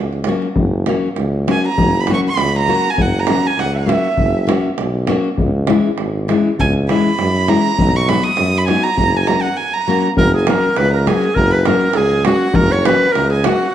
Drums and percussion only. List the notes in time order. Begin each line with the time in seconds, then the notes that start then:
0.13 davul high
0.24 davul high
0.42 davul high
0.56 davul low
0.86 davul high
1.16 davul high
1.48 davul high
1.78 davul low
2.07 davul high
2.37 davul high
2.98 davul low
3.27 davul high
3.59 davul high
3.89 davul high
4.17 davul low
4.49 davul high
4.78 davul high
5.07 davul high
5.24 davul high
5.38 davul low
5.67 davul high
5.98 davul high
6.29 davul high
6.59 davul low
6.89 davul high
7.19 davul high
7.48 davul high
7.78 davul low
8.09 davul high
8.37 davul high
8.68 davul high
8.97 davul low
9.15 davul high
9.27 davul high
9.45 davul high
10.17 davul low
10.34 davul high
10.47 davul high
10.64 davul high
10.76 davul high
11.07 davul high
11.24 davul high
11.36 davul low
11.52 davul high
11.65 davul high
11.81 davul high
11.93 davul high
12.25 davul high
12.42 davul high
12.54 davul low
12.71 davul high
12.85 davul high
13.02 davul high
13.15 davul high
13.44 davul high
13.63 davul high